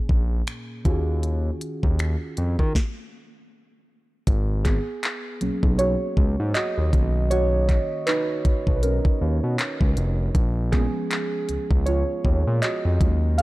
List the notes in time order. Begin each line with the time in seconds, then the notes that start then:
Already playing: A#2 A#3 C#4 G#4
0.09 A#1, kick
0.47 finger snap, closed hi-hat
0.84 D#2 D#3 C#4 F4 F#4 G#4, kick, closed hi-hat
1.23 closed hi-hat
1.61 closed hi-hat
1.83 D#2, kick
1.99 finger snap, closed hi-hat
2.37 F2, closed hi-hat
2.59 D#3, kick
2.75 kick, snare
4.27 G#1, kick, closed hi-hat
4.64 B3 G#4, kick, clap, closed hi-hat
5.03 clap, closed hi-hat
5.41 B1 F#3 A#3 C#4, closed hi-hat
5.63 B1, kick
5.78 F#4 C#5, closed hi-hat
6.17 C#2, kick
6.40 G#2
6.54 F#4 D#5, clap, closed hi-hat
6.78 D#2
6.93 B1 D#3 A#3 C#4, kick, closed hi-hat
7.30 F#4 C#5, closed hi-hat
7.69 kick, clap, closed hi-hat
8.06 D#4 B4, clap, closed hi-hat
8.45 B1, kick, closed hi-hat
8.67 B1, kick
8.76 B4
8.82 C#4 A#4, closed hi-hat
9.05 kick
9.21 D#2
9.44 B2
9.59 clap, closed hi-hat
9.81 C#2, kick
9.97 F1, closed hi-hat
10.35 A#1, kick, closed hi-hat
10.72 F3 G#3 B3 C#4 G#4, kick, clap, closed hi-hat
11.11 clap, closed hi-hat
11.49 C#2, closed hi-hat
11.71 C#2, kick
11.86 F4 C#5, closed hi-hat
12.25 D#2, kick
12.47 A#2
12.62 F#4 D#5, clap, closed hi-hat
12.85 F2
13.01 D#2 F#3 G#3 C#4 F4, kick, closed hi-hat
13.38 F5, closed hi-hat